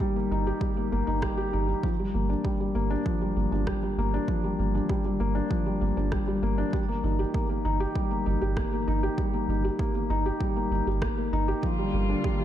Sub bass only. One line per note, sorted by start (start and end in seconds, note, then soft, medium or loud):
0.31 0.52 G1 medium
0.92 1.03 G1 medium
1.07 1.28 G1 medium
1.53 1.74 G1 medium
2.14 2.35 G1 medium
2.75 2.96 G1 medium
3.36 3.47 G1 medium
3.51 3.73 G1 medium
3.98 4.19 G1 medium
4.59 4.80 G1 medium
5.20 5.41 G1 medium
5.81 5.92 G1 medium
5.97 6.18 G1 medium
6.42 6.64 G1 medium
7.03 7.25 G1 medium
7.65 7.86 G1 medium
8.26 8.37 G1 medium
8.42 8.63 G1 medium
8.87 9.09 G1 medium
9.48 9.70 G1 medium
10.10 10.31 G1 medium
10.71 10.82 G1 medium
10.87 11.08 G1 medium
11.33 11.54 G1 medium
11.93 12.15 G1 medium